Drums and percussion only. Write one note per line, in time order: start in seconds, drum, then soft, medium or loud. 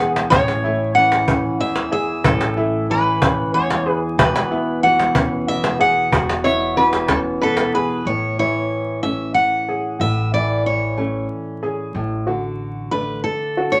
0.00 cajon slap medium
0.16 cajon slap medium
0.32 cajon bass medium
0.48 cajon slap medium
1.12 cajon slap medium
1.28 cajon bass medium
1.76 cajon slap medium
2.24 cajon bass loud
2.41 cajon slap medium
2.57 cajon slap soft
3.22 cajon bass medium
3.70 cajon slap medium
4.19 cajon bass loud
4.36 cajon slap medium
4.52 cajon slap soft
5.00 cajon slap medium
5.15 cajon bass medium
5.64 cajon slap medium
6.12 cajon bass medium
6.29 cajon slap medium
6.45 cajon slap soft
6.61 cajon slap soft
6.93 cajon slap medium
7.08 cajon bass medium
7.08 cajon slap soft
7.57 cajon slap medium
7.90 cajon slap soft